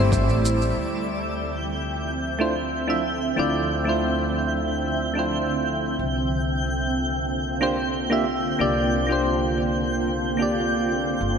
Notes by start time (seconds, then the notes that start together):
Already playing: G1 C3 G3 A3 C4 E4 D5 E6
0.00 C5
0.12 kick, shaker
0.27 A1, shaker
0.45 shaker
0.62 shaker
0.77 D2 D3 F3 C4 E5 G5 G6
2.39 A3 D4 E4 F4 C5
2.88 A3 D4 E4 F4 E5
3.36 D2 A3 D4 E4 F4 D5
3.84 A3 D4 E4
3.88 F4 C5
5.14 A3 D4 E4
5.18 F4 C5
5.99 C2 A#3 F4
7.61 A#3 D4 F4 G4 C5
8.10 A#3 D4 F4 G4 E5
8.59 C2 A#3 D4 F4 G4 D5
9.07 A#3 D4 F4
9.11 G4 C5
10.37 A#3 D4 F4
10.41 G4 D5
11.21 G1